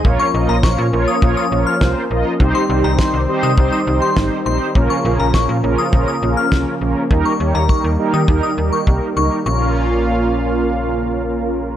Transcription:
<<
  \new Staff \with { instrumentName = "Synth bell" } { \time 4/4 \key bes \dorian \tempo 4 = 102 r16 des'''16 r16 bes''16 des'''16 r8 ees'''16 r16 ees'''16 r16 f'''8 r8. | r16 c'''16 r16 bes''16 c'''16 r8 ees'''16 r16 ees'''16 r16 c'''16 r8 c'''16 r16 | r16 des'''16 r16 bes''16 des'''16 r8 ees'''16 r16 ees'''16 r16 f'''8 r8. | r16 des'''16 r16 bes''16 des'''16 r8 ees'''16 r16 ees'''16 r16 des'''16 r8 des'''16 r16 |
des'''2. r4 | }
  \new Staff \with { instrumentName = "Analog polysynth" } { \time 4/4 \key bes \dorian <f' bes' des''>8 <f' bes' ees''>8 <f' bes' des''>8 <f' bes' des''>8 <f' bes' des''>8 <f' bes' des''>8 <f' bes' c''>8 <f' bes' ees''>8 | <ees' g' c''>8 <ees' g' c''>8 <ees' g' c''>8 <ees' g' c''>8 <ees' g' c''>8 <ees' g' c''>8 <ees' g' c''>8 <ees' g' c''>8 | <des' f' bes'>8 <des' f' bes'>8 <des' f' bes'>8 <des' f' bes'>8 <des' f' bes'>8 <des' f' bes'>8 <des' f' bes'>8 <des' f' bes'>8 | <ees' g' bes'>8 <ees' g' des''>8 <ees' g' bes'>8 <ees' g' bes'>8 <ees' g' bes'>8 <ees' g' bes'>8 <ees' g' bes'>8 <ees' g' bes'>8 |
<des' f' bes'>1 | }
  \new Staff \with { instrumentName = "Analog synth pad" } { \clef bass \time 4/4 \key bes \dorian << { des'1 | c'1 | bes1~ | bes1 |
<bes, bes des' f' f''>1 | } \\ { <f bes>1 | <ees g>1 | <des f>1 | <ees g>1 |
r1 | } >> }
  \new Staff \with { instrumentName = "FM bass" } { \clef bass \time 4/4 \key bes \dorian bes,,16 r16 bes,,16 bes,,16 bes,,16 bes,16 bes,,16 r16 bes,,16 r16 bes,,16 r16 c,16 r16 bes,,16 r16 | c,16 r16 c,16 c,16 r16 c,16 r16 c16 c,16 r16 c,16 r16 aes,,16 r16 bes,,16 r16 | bes,,16 r16 bes,,16 bes,,16 bes,,16 bes,16 bes,,16 r16 bes,,16 r16 bes,,16 r16 c,16 r16 bes,,16 r16 | ees,16 r16 ees,16 ees,16 r16 ees,16 r16 ees16 ees,16 r16 ees,16 r16 c,16 r16 des,16 r16 |
bes,,1 | }
  \new DrumStaff \with { instrumentName = "Drums" } \drummode { \time 4/4 bd4 <bd sn>4 bd4 <bd sn>4 | bd4 <bd sn>4 bd4 <bd sn>4 | bd4 <bd sn>4 bd4 <bd sn>4 | bd4 bd4 bd4 bd4 |
r4 r4 r4 r4 | }
>>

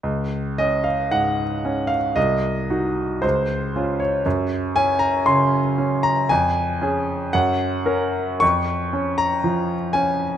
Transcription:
\new Staff \with { instrumentName = "Grand piano" } { \time 2/4 \key des \major \tempo 4 = 58 << { r8 ees''16 f''16 ges''8. f''16 | ees''4 c''8. des''16 | r8 aes''16 bes''16 c'''8. bes''16 | aes''4 ges''4 |
des'''8. bes''8. aes''8 | } \\ { des,8 des'8 aes,8 des'8 | c,8 <ees' ges'>8 des,8 <des' f'>8 | ges,8 des'8 des8 des'8 | f,8 <des' aes'>8 ges,8 <des' bes'>8 |
f,8 des'8 f8 des'8 | } >> }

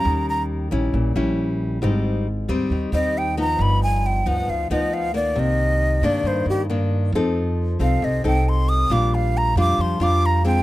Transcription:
<<
  \new Staff \with { instrumentName = "Flute" } { \time 4/4 \key c \minor \tempo 4 = 136 bes''8 bes''8 r2. | r2 r8 ees''8 g''8 bes''8 | b''8 aes''8 g''8 fis''8 f''8 ees''8 f''8 d''8 | ees''4. d''8 c''8 g'8 r4 |
r4. f''8 ees''8 g''8 c'''8 ees'''8 | d'''8 f''8 bes''8 d'''8 c'''8 d'''8 bes''8 g''8 | }
  \new Staff \with { instrumentName = "Nylon-string guitar" } { \time 4/4 \key c \minor << { <g des'>4. <g des' fes'>4 <g des' fes'>4. | <g c' ees'>4 r8 <g c' ees'>4 <g c' ees'>4 <f b ees'>8~ | <f b ees'>4. <f b ees'>4 <f b ees'>4 <ees bes>8~ | <ees bes>4. <ees bes d'>4. <ees bes d'>4 |
<c' ees' a'>4. <c' ees' a'>4 <c' ees' a'>4. | <g d' f'>4. <g d' f'>4 <g d' f'>4 <aes c' d'>8 | } \\ { ees2 bes,2 | aes,2 ees2 | g,2 r2 | c2 g,2 |
f2 c2 | bes,2 f2 | } >> }
  \new Staff \with { instrumentName = "Upright bass" } { \clef bass \time 4/4 \key c \minor ees,4. bes,,8 bes,,8 bes,,4. | aes,,4. ees,8 ees,8 ees,4. | g,,4. d,8 d,8 d,4. | c,4. g,8 g,8 g,4. |
f,4. c,8 c,8 c,4. | bes,,4. f,8 f,8 f,4. | }
>>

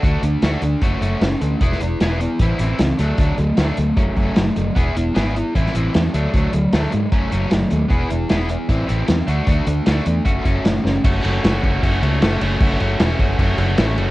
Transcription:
<<
  \new Staff \with { instrumentName = "Distorted electric guitar" } { \time 4/4 \key fis \minor \tempo 4 = 153 <a d' fis'>8 <a d'>8 <a d' fis'>8 <a d'>8 <a cis' fis'>8 <a cis' fis'>8 <a cis'>8 <a cis'>8 | <b e' gis'>8 <b e'>8 <b e' gis'>8 <b e'>8 <e c' e'>8 <e c' e'>8 <e c'>8 <fis a d'>8 | <fis a d'>8 <fis a>8 <fis a d'>8 <fis a>8 <fis a cis'>8 <fis a cis'>8 <fis a>8 <fis a>8 | <b e' gis'>8 <b e'>8 <b e' gis'>8 <b e'>8 <e c' e'>8 <e c' e'>8 <e c'>8 <fis a d'>8 |
<fis a d'>8 <fis a>8 <fis a d'>8 <fis a>8 <fis a cis'>8 <fis a cis'>8 <fis a>8 <fis a>8 | <b e' gis'>8 <b e'>8 <b e' gis'>8 <b e'>8 <e c' e'>8 <e c' e'>8 <e c'>8 <a d' fis'>8 | <a d' fis'>8 <a d'>8 <a d' fis'>8 <a d'>8 <a cis' fis'>8 <a cis' fis'>8 <a cis'>8 <a cis'>8 | <a cis' fis'>8 <a cis' fis'>8 <a cis' fis'>8 <a cis' fis'>8 <a cis' fis'>8 <a cis' fis'>8 <a cis' fis'>8 <a cis' fis'>8 |
<a cis' fis'>8 <a cis' fis'>8 <a cis' fis'>8 <a cis' fis'>8 <a cis' fis'>8 <a cis' fis'>8 <a cis' fis'>8 <a cis' fis'>8 | }
  \new Staff \with { instrumentName = "Fingered electric bass" } { \clef bass \time 4/4 \key fis \minor d,8 d,8 d,8 d,8 fis,,8 fis,,8 fis,,8 d,8 | e,,8 e,,8 e,,4 a,,8 a,,8 cis,8 d,8 | d,8 d,8 d,8 d,8 fis,,8 fis,,8 fis,,8 fis,,8 | e,,8 e,,8 gis,,4 a,,8 a,,8 e,8 d,8 |
d,8 d,8 d,8 gis,8 fis,,8 fis,,8 fis,,8 dis,8 | e,,8 e,,8 e,,4 a,,8 a,,8 e,8 d,8 | d,8 d,8 d,8 e,8 fis,,8 fis,,8 fis,,8 fis,,8 | fis,,8 fis,,8 fis,,8 fis,,8 fis,,8 cis,8 fis,,8 fis,,8 |
fis,,8 fis,,8 e,,8 fis,,8 fis,,8 fis,,8 a,,8 fis,,8 | }
  \new DrumStaff \with { instrumentName = "Drums" } \drummode { \time 4/4 <hh bd>8 hh8 <hh sn>8 hh8 <hh bd>8 hh8 <hh sn>8 hh8 | <hh bd>16 sn16 hh8 <hh sn>8 hh8 <hh bd>8 hh8 <hh sn>8 hh8 | <hh bd>8 hh8 <hh sn>8 hh8 <hh bd>8 <hh bd>8 <hh sn>8 hh8 | <hh bd>8 hh8 <hh sn>8 hh8 <hh bd>16 sn16 hh8 <hh sn>8 hh8 |
<hh bd>8 hh8 <hh sn>8 hh8 <hh bd>8 hh8 <hh sn>8 hh8 | <hh bd>8 hh8 <hh sn>8 hh8 <hh bd>8 hh8 <hh sn>8 hh8 | <hh bd>8 hh8 <hh sn>8 hh8 <hh bd>8 <hh bd>8 <hh sn>8 sn8 | <cymc bd>8 cymc8 <cymc sn>8 <cymc bd>8 <cymc bd>8 cymc8 <cymc sn>8 cymc8 |
<cymc bd>8 cymc8 <cymc sn>8 <cymc bd>8 <cymc bd>8 cymc8 <cymc sn>8 cymc8 | }
>>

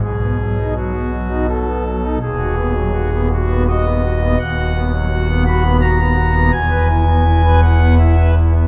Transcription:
<<
  \new Staff \with { instrumentName = "Pipe organ" } { \time 3/4 \key b \mixolydian \tempo 4 = 83 gis'4 fis'4 a'4 | gis'4. fis'8 dis''4 | \key b \major fis''4. b''8 ais''4 | gis''4. fis''8 e''8 r8 | }
  \new Staff \with { instrumentName = "Pipe organ" } { \time 3/4 \key b \mixolydian << { b,16 b16 fis16 dis'16 fis16 b16 fis16 dis'16 fis16 b16 fis16 dis'16 | dis,16 fis'16 b16 fis16 fis'16 b16 r16 b16 fis'16 b16 fis'16 b16 | \key b \major dis,16 fis'16 b16 fis16 fis'16 b16 fis'16 b16 fis'16 b16 fis'16 b16 | e,16 b'16 e'16 b16 e'16 b'16 e'16 b16 e'16 b'16 e'16 b16 | } \\ { b,,2. | dis,,2. | dis,,2. | e,,2. | } >> }
>>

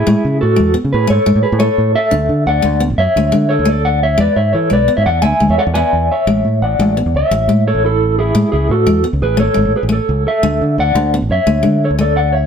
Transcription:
<<
  \new Staff \with { instrumentName = "Clean electric guitar" } { \time 12/8 \key a \major \tempo 4. = 116 <e' gis'>4 <fis' a'>4 r8 <gis' b'>8 <a' cis''>4 <gis' b'>8 <a' cis''>4 <a' e''>8~ | <a' e''>4 <d'' fis''>4 r8 <cis'' e''>4. <a' cis''>8 <a' d''>8 <d'' fis''>8 <cis'' e''>8 | <b' d''>8 <cis'' e''>8 <a' cis''>8 <b' d''>8. <cis'' e''>16 <d'' fis''>8 <e'' gis''>8. <cis'' e''>16 <a' cis'' d'' fis''>8 <b' d'' e'' gis''>4 <cis'' e''>8~ | <cis'' e''>4 <d'' fis''>4. <cis'' e''>4. <a' cis''>8 <e' a'>4 <e' gis'>8~ |
<e' gis'>8 <e' gis'>8 <fis' a'>4 r8 <gis' b'>8 <a' cis''>4 <gis' b'>8 <a' cis''>4 <a' e''>8~ | <a' e''>4 <d'' fis''>4 r8 <cis'' e''>4. <a' cis''>8 <a' d''>8 <d'' fis''>8 <cis'' e''>8 | }
  \new Staff \with { instrumentName = "Steel-string acoustic guitar" } { \time 12/8 \key a \major gis4 r8 gis8 b4 a8 gis4 a4 r8 | d'4 r8 a8 b4 a8 gis4 a4 r8 | gis4 r8 gis8 b4 a8 gis4 b4 r8 | gis4 r8 gis8 b4 r8 gis4 r4. |
gis4 r8 gis8 b4 a8 gis4 a4 r8 | a4 r4 b4 a8 gis4 a4 r8 | }
  \new Staff \with { instrumentName = "Fingered electric bass" } { \clef bass \time 12/8 \key a \major a,16 r16 cis8 a,8 e,8 r16 cis16 a,8 gis,16 r16 gis,16 a,16 r16 a,8 r16 a,8 r8 | d,8 d8 d,8 d,8. a,,16 fis,16 r16 d,8 d8. d,4.~ d,16 | e,16 r16 gis,8 e8 b,,8 r16 gis,16 e,8 d,16 r16 d,16 e,16 r16 e,8 r16 e,8 r8 | a,,8 a,8 a,,8 a,,8. e,16 cis,16 r16 a,,8 a,8. a,,4.~ a,,16 |
a,16 r16 cis,8 a,8 e,8 r16 cis,16 a,,8 gis,,16 r16 gis,,16 a,,16 r16 a,,8 r16 cis,8 r8 | d,8 d8 d,8 d,8. a,,16 fis,16 r16 d,8 d8. d,4.~ d,16 | }
>>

